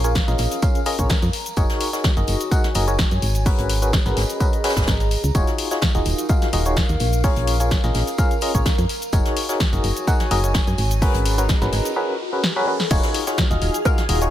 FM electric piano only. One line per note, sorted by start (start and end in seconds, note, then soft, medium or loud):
0.04 0.20 C#4 medium
0.04 0.20 F4 medium
0.04 0.20 G#4 medium
0.04 0.20 A#4 medium
0.04 0.20 C#5 medium
0.28 0.60 C#4 medium
0.28 0.60 F4 medium
0.28 0.60 G#4 medium
0.28 0.60 A#4 medium
0.28 0.60 D#5 medium
0.63 0.80 C#4 medium
0.63 0.80 F4 medium
0.63 0.80 G#4 medium
0.63 0.80 A#4 medium
0.63 0.80 F5 loud
0.86 0.96 C#4 medium
0.86 0.96 F4 medium
0.86 0.96 G#4 medium
0.86 0.96 A#4 medium
0.86 0.96 D#5 medium
0.99 1.15 C#4 medium
0.99 1.15 F4 medium
0.99 1.15 G#4 medium
0.99 1.15 A#4 medium
0.99 1.15 C#5 medium
1.57 1.90 D#4 medium
1.57 1.90 F#4 medium
1.57 1.90 G#4 medium
1.57 1.90 A#4 medium
1.57 1.90 C#5 loud
1.93 2.09 D#4 medium
1.93 2.09 F#4 medium
1.93 2.09 G#4 medium
1.93 2.09 A#4 medium
1.93 2.09 C#5 medium
2.17 2.49 D#4 medium
2.17 2.49 F#4 medium
2.17 2.49 G#4 medium
2.17 2.49 A#4 medium
2.17 2.49 D#5 medium
2.52 2.69 D#4 medium
2.52 2.69 F#4 medium
2.52 2.69 G#4 medium
2.52 2.69 A#4 medium
2.52 2.69 F#5 loud
2.75 2.85 D#4 medium
2.75 2.85 F#4 medium
2.75 2.85 G#4 medium
2.75 2.85 A#4 medium
2.75 2.85 D#5 medium
2.88 3.04 D#4 medium
2.88 3.04 F#4 medium
2.88 3.04 G#4 medium
2.88 3.04 A#4 medium
2.88 3.04 C#5 medium
3.46 3.79 C#4 medium
3.46 3.79 F#4 medium
3.46 3.79 G#4 medium
3.46 3.79 A#4 medium
3.46 3.79 B4 loud
3.82 3.98 C#4 medium
3.82 3.98 F#4 medium
3.82 3.98 G#4 medium
3.82 3.98 A#4 medium
3.82 3.98 B4 medium
4.06 4.38 C#4 medium
4.06 4.38 F#4 medium
4.06 4.38 G#4 medium
4.06 4.38 A#4 medium
4.06 4.38 B4 medium
4.40 4.57 C#4 medium
4.40 4.57 F#4 medium
4.40 4.57 G#4 medium
4.40 4.57 A#4 medium
4.40 4.57 B4 loud
4.64 4.74 C#4 medium
4.64 4.74 F#4 medium
4.64 4.74 G#4 medium
4.64 4.74 A#4 medium
4.64 4.74 B4 medium
4.77 4.93 C#4 medium
4.77 4.93 F#4 medium
4.77 4.93 G#4 medium
4.77 4.93 A#4 medium
4.77 4.93 B4 medium
5.35 5.68 D#4 medium
5.35 5.68 F4 medium
5.35 5.68 F#4 medium
5.35 5.68 G#4 medium
5.35 5.68 C#5 loud
5.71 5.87 D#4 medium
5.71 5.87 F4 medium
5.71 5.87 F#4 medium
5.71 5.87 G#4 medium
5.71 5.87 C#5 medium
5.95 6.27 D#4 medium
5.95 6.27 F4 medium
5.95 6.27 F#4 medium
5.95 6.27 G#4 medium
5.95 6.27 D#5 medium
6.29 6.46 D#4 medium
6.29 6.46 F4 medium
6.29 6.46 F#4 medium
6.29 6.46 G#4 medium
6.29 6.46 F5 loud
6.53 6.63 D#4 medium
6.53 6.63 F4 medium
6.53 6.63 F#4 medium
6.53 6.63 G#4 medium
6.53 6.63 D#5 medium
6.66 6.82 D#4 medium
6.66 6.82 F4 medium
6.66 6.82 F#4 medium
6.66 6.82 G#4 medium
6.66 6.82 C#5 medium
7.24 7.57 C#4 medium
7.24 7.57 F4 medium
7.24 7.57 G#4 medium
7.24 7.57 A#4 medium
7.24 7.57 C#5 loud
7.60 7.76 C#4 medium
7.60 7.76 F4 medium
7.60 7.76 G#4 medium
7.60 7.76 A#4 medium
7.60 7.76 C#5 medium
7.84 8.16 C#4 medium
7.84 8.16 F4 medium
7.84 8.16 G#4 medium
7.84 8.16 A#4 medium
7.84 8.16 D#5 medium
8.18 8.35 C#4 medium
8.18 8.35 F4 medium
8.18 8.35 G#4 medium
8.18 8.35 A#4 medium
8.18 8.35 F5 loud
8.42 8.52 C#4 medium
8.42 8.52 F4 medium
8.42 8.52 G#4 medium
8.42 8.52 A#4 medium
8.42 8.52 D#5 medium
8.55 8.71 C#4 medium
8.55 8.71 F4 medium
8.55 8.71 G#4 medium
8.55 8.71 A#4 medium
8.55 8.71 C#5 medium
9.13 9.46 D#4 medium
9.13 9.46 F#4 medium
9.13 9.46 G#4 medium
9.13 9.46 A#4 medium
9.13 9.46 C#5 loud
9.49 9.65 D#4 medium
9.49 9.65 F#4 medium
9.49 9.65 G#4 medium
9.49 9.65 A#4 medium
9.49 9.65 C#5 medium
9.73 10.05 D#4 medium
9.73 10.05 F#4 medium
9.73 10.05 G#4 medium
9.73 10.05 A#4 medium
9.73 10.05 D#5 medium
10.07 10.24 D#4 medium
10.07 10.24 F#4 medium
10.07 10.24 G#4 medium
10.07 10.24 A#4 medium
10.07 10.24 F#5 loud
10.31 10.41 D#4 medium
10.31 10.41 F#4 medium
10.31 10.41 G#4 medium
10.31 10.41 A#4 medium
10.31 10.41 D#5 medium
10.44 10.60 D#4 medium
10.44 10.60 F#4 medium
10.44 10.60 G#4 medium
10.44 10.60 A#4 medium
10.44 10.60 C#5 medium
11.02 11.35 C#4 medium
11.02 11.35 F#4 medium
11.02 11.35 G#4 medium
11.02 11.35 A#4 medium
11.02 11.35 B4 loud
11.38 11.54 C#4 medium
11.38 11.54 F#4 medium
11.38 11.54 G#4 medium
11.38 11.54 A#4 medium
11.38 11.54 B4 medium
11.62 11.94 C#4 medium
11.62 11.94 F#4 medium
11.62 11.94 G#4 medium
11.62 11.94 A#4 medium
11.62 11.94 B4 medium
11.96 12.13 C#4 medium
11.96 12.13 F#4 medium
11.96 12.13 G#4 medium
11.96 12.13 A#4 medium
11.96 12.13 B4 loud
12.33 12.42 C#4 medium
12.33 12.42 F#4 medium
12.33 12.42 G#4 medium
12.33 12.42 A#4 medium
12.33 12.42 B4 medium
12.56 12.66 C#4 loud
12.56 12.66 F#4 medium
12.56 12.66 G#4 medium
12.56 12.66 A#4 medium
12.56 12.66 B4 loud
12.67 12.78 C#4 medium
12.67 12.78 F#4 medium
12.67 12.78 G#4 medium
12.67 12.78 A#4 medium
12.67 12.78 B4 medium
12.91 13.24 D#4 medium
12.91 13.24 F4 medium
12.91 13.24 F#4 medium
12.91 13.24 G#4 medium
12.91 13.24 C#5 loud
13.27 13.43 D#4 medium
13.27 13.43 F4 medium
13.27 13.43 F#4 medium
13.27 13.43 G#4 medium
13.27 13.43 C#5 medium
13.51 13.83 D#4 medium
13.51 13.83 F4 medium
13.51 13.83 F#4 medium
13.51 13.83 G#4 medium
13.51 13.83 D#5 medium
13.85 14.02 D#4 medium
13.85 14.02 F4 medium
13.85 14.02 F#4 medium
13.85 14.02 G#4 medium
13.85 14.02 F5 loud
14.09 14.19 D#4 medium
14.09 14.19 F4 medium
14.09 14.19 F#4 medium
14.09 14.19 G#4 medium
14.09 14.19 D#5 medium
14.22 14.30 D#4 medium
14.22 14.30 F4 medium
14.22 14.30 F#4 medium
14.22 14.30 G#4 medium
14.22 14.30 C#5 medium